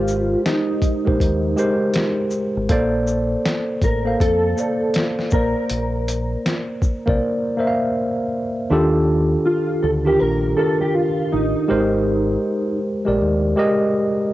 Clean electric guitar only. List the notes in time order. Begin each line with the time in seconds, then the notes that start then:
Already playing: F4
0.45 D#4
3.84 A#4
4.21 A4
5.33 A#4
9.46 F4
9.83 A4
10.07 G4
10.19 A#4
10.57 A4
10.81 G4
10.94 F4
11.32 D#4